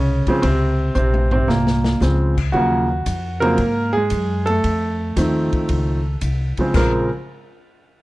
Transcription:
Already playing: upright bass C2, grand piano C#3 C#4
0.27 grand piano C#3 F3 G#3 C4, muted upright bass stroke, kick, ride
0.42 upright bass C#2, grand piano C3 C4, kick, ride
0.95 upright bass A#1, grand piano C3 C4, hi-hat pedal
1.14 high tom
1.31 grand piano C3 C4, floor tom
1.48 upright bass C2, grand piano A#2 A#3, snare
1.67 snare
1.84 snare
2.00 upright bass C#2, grand piano C#3 F3 G#3 C4, snare, hi-hat pedal
2.37 kick, crash
2.52 upright bass D#2, grand piano C#3 F3 F#3 A#3 F#4, kick
3.06 upright bass F2, kick, hi-hat pedal, ride
3.40 grand piano C#3 F3 F#3 A#3 C4 A#4, ride
3.58 upright bass G#2, kick, ride
3.93 grand piano G#4
3.97 grand piano G#3
4.10 upright bass F#2, kick, hi-hat pedal, ride
4.46 grand piano A3 A4, ride
4.64 upright bass F2, kick, ride
5.16 upright bass D#2, grand piano D#3 F3 A3 C4, kick, snare, hi-hat pedal, ride
5.53 muted upright bass stroke, kick, ride
5.69 upright bass C#2, kick, ride
6.21 upright bass C2, kick, hi-hat pedal, ride
6.57 grand piano C#3 F3 G#3 C4, muted upright bass stroke, kick, ride
6.74 upright bass A#1, grand piano C#3 F3 G#3 C4 A#4, kick, snare, crash

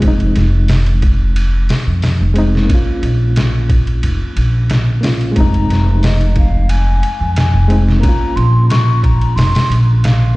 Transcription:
0.00 upright bass F1, reed electric piano G#3 C4, kick, ride
0.08 reed electric piano D#4
0.20 ride
0.36 upright bass F1, snare, ride
0.68 snare, open hi-hat
0.86 ride
1.02 kick, ride
1.36 ride
1.69 snare, open hi-hat
1.87 upright bass F2
2.02 snare, open hi-hat
2.20 upright bass F1
2.34 reed electric piano G#3 C4, ride
2.39 reed electric piano D#4
2.55 snare
2.65 reed electric piano A#3
2.69 reed electric piano C#4, kick, ride
2.74 reed electric piano F4
3.02 upright bass A#1, ride
3.36 snare, ride
3.69 kick, ride
3.87 ride
4.03 upright bass F1, ride
4.36 upright bass A#1, ride
4.70 snare, ride
5.01 reed electric piano A#3 C#4, snare, open hi-hat
5.05 reed electric piano F4
5.21 ride
5.31 reed electric piano G#3
5.36 upright bass F1, reed electric piano C4, flute A#5, kick, ride
5.40 reed electric piano D#4
5.54 ride
5.69 upright bass F1, snare, ride
6.03 flute D#5, snare, open hi-hat
6.21 ride
6.36 flute F5, kick, ride
6.69 flute G#5, ride
7.03 ride
7.20 upright bass F2
7.35 flute G#5, snare, ride
7.53 upright bass F1
7.68 reed electric piano G#3 C4, ride
7.72 reed electric piano D#4
7.89 snare
8.00 reed electric piano A#3, flute A#5, kick, ride
8.04 reed electric piano C#4
8.09 reed electric piano F4
8.36 upright bass A#1, flute C6, ride
8.70 flute C#6, snare, ride
9.03 flute A#5, kick, ride
9.21 ride
9.35 upright bass F1, flute C6, snare, open hi-hat
9.55 snare, open hi-hat
9.70 upright bass A#1, ride
10.04 flute F5, snare, ride

